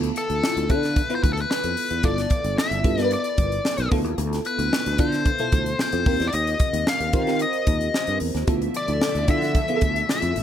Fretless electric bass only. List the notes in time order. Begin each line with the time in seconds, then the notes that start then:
0.30 D2
0.56 D2
0.70 D3
1.24 D2
1.64 F2
1.91 E2
2.04 G1
2.44 G1
2.71 G1
2.84 G2
3.38 G1
3.78 B1
3.92 D2
4.04 D#2
4.18 D2
4.58 D2
4.86 D2
4.99 D3
5.52 D2
5.93 F2
6.06 D#2
6.20 E2
6.33 D#2
6.73 D#2
7.00 D#2
7.13 D#3
7.67 D#2
8.07 G2
8.21 E2
8.34 D#2
8.48 D2
8.88 D2
9.15 D2
9.28 D3
9.82 D2
10.22 F2
10.36 A1